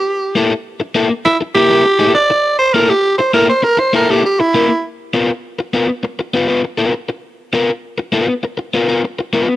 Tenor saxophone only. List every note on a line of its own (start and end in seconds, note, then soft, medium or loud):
0.00 0.60 G4 medium
1.25 1.38 E4 loud
1.55 2.10 G4 loud
2.15 2.56 D5 loud
2.59 2.75 C5 loud
2.73 2.91 A#4 loud
2.89 3.17 G4 loud
3.18 3.32 C5 medium
3.34 3.47 A#4 loud
3.49 3.65 C5 medium
3.64 3.81 A#4 loud
3.79 3.94 C5 medium
3.95 4.12 A#4 medium
4.10 4.24 G4 medium
4.25 4.41 G4 medium
4.40 4.84 E4 medium